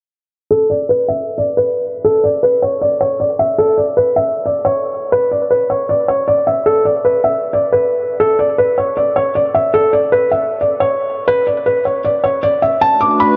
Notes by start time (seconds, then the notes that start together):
0.51 A4
0.70 D5
0.89 B4
1.08 E5
1.38 D5
1.57 B4
2.05 A4
2.24 D5
2.43 B4
2.62 C#5
2.81 D5
3.01 C#5
3.20 D5
3.39 E5
3.58 A4
3.78 D5
3.97 B4
4.16 E5
4.46 D5
4.65 C#5
5.12 B4
5.31 D5
5.51 B4
5.70 C#5
5.89 D5
6.08 C#5
6.28 D5
6.47 E5
6.66 A4
6.85 D5
7.05 B4
7.24 E5
7.53 D5
7.72 B4
8.20 A4
8.39 D5
8.58 B4
8.78 C#5
8.97 D5
9.16 C#5
9.35 D5
9.54 E5
9.74 A4
9.93 D5
10.12 B4
10.31 E5
10.61 D5
10.80 C#5
11.28 B4
11.47 D5
11.66 B4
11.85 C#5
12.05 D5
12.24 C#5
12.43 D5
12.62 E5
12.81 A3 D4 F#4 B4 A5
13.01 D6
13.20 B5